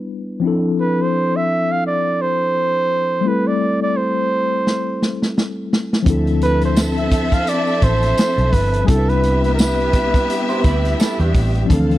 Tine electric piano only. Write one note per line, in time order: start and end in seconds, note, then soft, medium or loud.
0.00 0.37 G3 medium
0.00 0.38 B3 medium
0.00 0.39 D4 medium
0.00 0.40 E4 medium
0.00 0.41 B4 medium
0.40 3.19 F3 medium
0.40 3.20 C4 medium
0.40 3.21 D4 medium
0.45 3.22 E4 medium
0.45 3.23 A4 medium
3.21 6.01 G3 medium
3.21 6.01 A3 medium
3.21 6.02 C4 medium
3.26 6.03 E4 medium
3.26 6.04 A4 medium
6.02 8.82 F3 medium
6.02 8.83 C4 medium
6.02 8.84 D4 medium
6.09 8.85 E4 medium
6.09 8.86 A4 medium
8.85 11.64 G3 medium
8.85 11.65 C4 medium
8.85 11.66 D4 medium
8.90 11.66 E4 medium
8.90 8.97 A4 medium
8.98 11.71 B4 medium
11.65 11.98 F3 medium
11.65 11.98 C4 medium
11.65 11.98 D4 medium
11.71 11.98 E3 medium
11.71 11.98 A4 medium